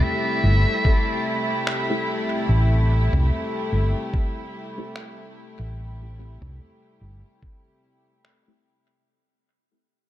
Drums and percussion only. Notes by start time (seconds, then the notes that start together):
0.85 kick
1.67 finger snap
3.13 mid tom
4.14 kick
4.96 finger snap
6.42 mid tom
7.43 kick
8.25 finger snap